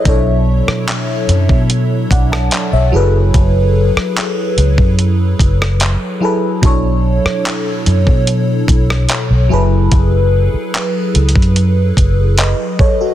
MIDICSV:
0, 0, Header, 1, 5, 480
1, 0, Start_track
1, 0, Key_signature, 2, "minor"
1, 0, Tempo, 821918
1, 32, Time_signature, 4, 2, 24, 8
1, 7674, End_track
2, 0, Start_track
2, 0, Title_t, "FM electric piano"
2, 0, Program_c, 0, 5
2, 0, Control_c, 0, 64, 127
2, 0, Note_on_c, 0, 76, 68
2, 25, Note_on_c, 0, 47, 90
2, 30, Note_on_c, 0, 54, 80
2, 35, Note_on_c, 0, 62, 79
2, 40, Control_c, 0, 64, 0
2, 40, Note_on_c, 0, 64, 80
2, 46, Note_on_c, 0, 69, 77
2, 51, Note_on_c, 0, 73, 99
2, 141, Control_c, 0, 64, 127
2, 143, Note_off_c, 0, 76, 0
2, 612, Note_off_c, 0, 47, 0
2, 615, Note_off_c, 0, 54, 0
2, 617, Note_off_c, 0, 62, 0
2, 620, Note_off_c, 0, 64, 0
2, 623, Note_off_c, 0, 69, 0
2, 625, Note_off_c, 0, 73, 0
2, 1235, Note_on_c, 0, 78, 63
2, 1239, Note_on_c, 0, 74, 57
2, 1348, Note_off_c, 0, 78, 0
2, 1349, Note_off_c, 0, 74, 0
2, 1356, Note_on_c, 0, 81, 72
2, 1360, Note_on_c, 0, 78, 58
2, 1582, Note_off_c, 0, 81, 0
2, 1584, Note_off_c, 0, 78, 0
2, 1594, Note_on_c, 0, 76, 73
2, 1599, Note_on_c, 0, 73, 60
2, 1704, Note_on_c, 0, 54, 92
2, 1710, Note_on_c, 0, 64, 82
2, 1716, Note_on_c, 0, 68, 80
2, 1718, Control_c, 0, 64, 0
2, 1722, Note_on_c, 0, 69, 81
2, 1730, Note_on_c, 0, 71, 99
2, 1821, Note_off_c, 0, 76, 0
2, 1822, Control_c, 0, 64, 127
2, 1823, Note_off_c, 0, 73, 0
2, 2476, Note_off_c, 0, 54, 0
2, 2479, Note_off_c, 0, 64, 0
2, 2482, Note_off_c, 0, 68, 0
2, 2485, Note_off_c, 0, 69, 0
2, 2489, Note_off_c, 0, 71, 0
2, 3623, Note_on_c, 0, 54, 85
2, 3629, Note_on_c, 0, 64, 84
2, 3636, Note_on_c, 0, 68, 78
2, 3642, Note_on_c, 0, 69, 84
2, 3649, Note_on_c, 0, 71, 94
2, 3773, Note_off_c, 0, 54, 0
2, 3776, Note_off_c, 0, 64, 0
2, 3780, Note_off_c, 0, 68, 0
2, 3783, Note_off_c, 0, 69, 0
2, 3786, Note_off_c, 0, 71, 0
2, 3863, Note_on_c, 0, 47, 90
2, 3867, Note_on_c, 0, 54, 80
2, 3873, Note_on_c, 0, 62, 84
2, 3878, Control_c, 0, 64, 0
2, 3878, Note_on_c, 0, 64, 82
2, 3884, Note_on_c, 0, 69, 86
2, 3888, Note_on_c, 0, 73, 101
2, 3996, Control_c, 0, 64, 127
2, 4451, Note_off_c, 0, 47, 0
2, 4454, Note_off_c, 0, 54, 0
2, 4456, Note_off_c, 0, 62, 0
2, 4459, Note_off_c, 0, 64, 0
2, 4462, Note_off_c, 0, 69, 0
2, 4464, Note_off_c, 0, 73, 0
2, 5543, Note_on_c, 0, 54, 91
2, 5549, Note_on_c, 0, 64, 79
2, 5556, Note_on_c, 0, 68, 81
2, 5560, Control_c, 0, 64, 0
2, 5563, Note_on_c, 0, 69, 80
2, 5568, Note_on_c, 0, 71, 104
2, 5675, Control_c, 0, 64, 127
2, 6315, Note_off_c, 0, 54, 0
2, 6318, Note_off_c, 0, 64, 0
2, 6322, Note_off_c, 0, 68, 0
2, 6325, Note_off_c, 0, 69, 0
2, 6328, Note_off_c, 0, 71, 0
2, 7235, Note_on_c, 0, 75, 66
2, 7239, Note_on_c, 0, 71, 60
2, 7462, Note_off_c, 0, 75, 0
2, 7464, Note_off_c, 0, 71, 0
2, 7475, Note_on_c, 0, 73, 73
2, 7478, Note_on_c, 0, 69, 62
2, 7588, Note_off_c, 0, 73, 0
2, 7589, Note_off_c, 0, 69, 0
2, 7595, Note_on_c, 0, 69, 67
2, 7599, Note_on_c, 0, 66, 60
2, 7674, Note_off_c, 0, 66, 0
2, 7674, Note_off_c, 0, 69, 0
2, 7674, End_track
3, 0, Start_track
3, 0, Title_t, "Fingered electric bass"
3, 0, Program_c, 1, 33
3, 33, Note_on_c, 1, 35, 108
3, 354, Note_off_c, 1, 35, 0
3, 752, Note_on_c, 1, 42, 96
3, 859, Note_off_c, 1, 42, 0
3, 874, Note_on_c, 1, 47, 94
3, 1194, Note_off_c, 1, 47, 0
3, 1231, Note_on_c, 1, 35, 93
3, 1446, Note_off_c, 1, 35, 0
3, 1593, Note_on_c, 1, 35, 87
3, 1700, Note_off_c, 1, 35, 0
3, 1714, Note_on_c, 1, 30, 93
3, 1927, Note_off_c, 1, 30, 0
3, 1953, Note_on_c, 1, 30, 107
3, 2274, Note_off_c, 1, 30, 0
3, 2673, Note_on_c, 1, 37, 98
3, 2780, Note_off_c, 1, 37, 0
3, 2793, Note_on_c, 1, 42, 93
3, 3114, Note_off_c, 1, 42, 0
3, 3152, Note_on_c, 1, 30, 91
3, 3473, Note_off_c, 1, 30, 0
3, 3872, Note_on_c, 1, 35, 112
3, 4194, Note_off_c, 1, 35, 0
3, 4594, Note_on_c, 1, 42, 96
3, 4700, Note_off_c, 1, 42, 0
3, 4713, Note_on_c, 1, 47, 98
3, 5034, Note_off_c, 1, 47, 0
3, 5071, Note_on_c, 1, 35, 99
3, 5286, Note_off_c, 1, 35, 0
3, 5433, Note_on_c, 1, 35, 91
3, 5540, Note_off_c, 1, 35, 0
3, 5553, Note_on_c, 1, 30, 96
3, 5767, Note_off_c, 1, 30, 0
3, 5793, Note_on_c, 1, 30, 110
3, 6114, Note_off_c, 1, 30, 0
3, 6514, Note_on_c, 1, 37, 94
3, 6620, Note_off_c, 1, 37, 0
3, 6633, Note_on_c, 1, 42, 88
3, 6954, Note_off_c, 1, 42, 0
3, 6992, Note_on_c, 1, 30, 94
3, 7313, Note_off_c, 1, 30, 0
3, 7674, End_track
4, 0, Start_track
4, 0, Title_t, "Muted fingered electric bass strokes"
4, 393, Note_on_c, 9, 29, 49
4, 451, Note_off_c, 9, 29, 0
4, 2314, Note_on_c, 9, 29, 49
4, 2373, Note_off_c, 9, 29, 0
4, 4234, Note_on_c, 9, 29, 48
4, 4293, Note_off_c, 9, 29, 0
4, 6154, Note_on_c, 9, 29, 49
4, 6212, Note_off_c, 9, 29, 0
4, 7674, End_track
5, 0, Start_track
5, 0, Title_t, "Drums"
5, 31, Note_on_c, 9, 42, 70
5, 32, Note_on_c, 9, 36, 123
5, 90, Note_off_c, 9, 36, 0
5, 90, Note_off_c, 9, 42, 0
5, 398, Note_on_c, 9, 37, 71
5, 456, Note_off_c, 9, 37, 0
5, 513, Note_on_c, 9, 42, 70
5, 518, Note_on_c, 9, 39, 121
5, 572, Note_off_c, 9, 42, 0
5, 576, Note_off_c, 9, 39, 0
5, 753, Note_on_c, 9, 42, 62
5, 811, Note_off_c, 9, 42, 0
5, 872, Note_on_c, 9, 36, 96
5, 930, Note_off_c, 9, 36, 0
5, 991, Note_on_c, 9, 42, 64
5, 1049, Note_off_c, 9, 42, 0
5, 1230, Note_on_c, 9, 36, 95
5, 1236, Note_on_c, 9, 42, 70
5, 1289, Note_off_c, 9, 36, 0
5, 1294, Note_off_c, 9, 42, 0
5, 1361, Note_on_c, 9, 37, 101
5, 1419, Note_off_c, 9, 37, 0
5, 1467, Note_on_c, 9, 42, 72
5, 1479, Note_on_c, 9, 39, 105
5, 1525, Note_off_c, 9, 42, 0
5, 1537, Note_off_c, 9, 39, 0
5, 1952, Note_on_c, 9, 36, 125
5, 1952, Note_on_c, 9, 42, 66
5, 2010, Note_off_c, 9, 36, 0
5, 2010, Note_off_c, 9, 42, 0
5, 2319, Note_on_c, 9, 37, 72
5, 2377, Note_off_c, 9, 37, 0
5, 2434, Note_on_c, 9, 42, 71
5, 2439, Note_on_c, 9, 39, 124
5, 2493, Note_off_c, 9, 42, 0
5, 2497, Note_off_c, 9, 39, 0
5, 2673, Note_on_c, 9, 42, 59
5, 2732, Note_off_c, 9, 42, 0
5, 2792, Note_on_c, 9, 36, 90
5, 2850, Note_off_c, 9, 36, 0
5, 2912, Note_on_c, 9, 42, 61
5, 2970, Note_off_c, 9, 42, 0
5, 3150, Note_on_c, 9, 36, 90
5, 3156, Note_on_c, 9, 42, 67
5, 3209, Note_off_c, 9, 36, 0
5, 3215, Note_off_c, 9, 42, 0
5, 3281, Note_on_c, 9, 37, 102
5, 3339, Note_off_c, 9, 37, 0
5, 3387, Note_on_c, 9, 42, 77
5, 3399, Note_on_c, 9, 39, 103
5, 3445, Note_off_c, 9, 42, 0
5, 3457, Note_off_c, 9, 39, 0
5, 3871, Note_on_c, 9, 42, 70
5, 3872, Note_on_c, 9, 36, 124
5, 3930, Note_off_c, 9, 36, 0
5, 3930, Note_off_c, 9, 42, 0
5, 4238, Note_on_c, 9, 37, 70
5, 4297, Note_off_c, 9, 37, 0
5, 4354, Note_on_c, 9, 42, 75
5, 4358, Note_on_c, 9, 39, 122
5, 4412, Note_off_c, 9, 42, 0
5, 4417, Note_off_c, 9, 39, 0
5, 4592, Note_on_c, 9, 42, 61
5, 4651, Note_off_c, 9, 42, 0
5, 4712, Note_on_c, 9, 36, 94
5, 4770, Note_off_c, 9, 36, 0
5, 4831, Note_on_c, 9, 42, 63
5, 4889, Note_off_c, 9, 42, 0
5, 5070, Note_on_c, 9, 36, 94
5, 5075, Note_on_c, 9, 42, 70
5, 5129, Note_off_c, 9, 36, 0
5, 5133, Note_off_c, 9, 42, 0
5, 5199, Note_on_c, 9, 37, 102
5, 5258, Note_off_c, 9, 37, 0
5, 5306, Note_on_c, 9, 42, 81
5, 5318, Note_on_c, 9, 39, 106
5, 5365, Note_off_c, 9, 42, 0
5, 5376, Note_off_c, 9, 39, 0
5, 5791, Note_on_c, 9, 42, 71
5, 5792, Note_on_c, 9, 36, 120
5, 5849, Note_off_c, 9, 42, 0
5, 5850, Note_off_c, 9, 36, 0
5, 6274, Note_on_c, 9, 42, 70
5, 6279, Note_on_c, 9, 39, 116
5, 6332, Note_off_c, 9, 42, 0
5, 6337, Note_off_c, 9, 39, 0
5, 6511, Note_on_c, 9, 42, 62
5, 6569, Note_off_c, 9, 42, 0
5, 6591, Note_on_c, 9, 42, 49
5, 6631, Note_on_c, 9, 36, 92
5, 6649, Note_off_c, 9, 42, 0
5, 6671, Note_on_c, 9, 42, 38
5, 6690, Note_off_c, 9, 36, 0
5, 6729, Note_off_c, 9, 42, 0
5, 6751, Note_on_c, 9, 42, 67
5, 6810, Note_off_c, 9, 42, 0
5, 6990, Note_on_c, 9, 36, 87
5, 6996, Note_on_c, 9, 42, 67
5, 7049, Note_off_c, 9, 36, 0
5, 7054, Note_off_c, 9, 42, 0
5, 7227, Note_on_c, 9, 42, 76
5, 7239, Note_on_c, 9, 39, 105
5, 7286, Note_off_c, 9, 42, 0
5, 7298, Note_off_c, 9, 39, 0
5, 7471, Note_on_c, 9, 36, 88
5, 7529, Note_off_c, 9, 36, 0
5, 7674, End_track
0, 0, End_of_file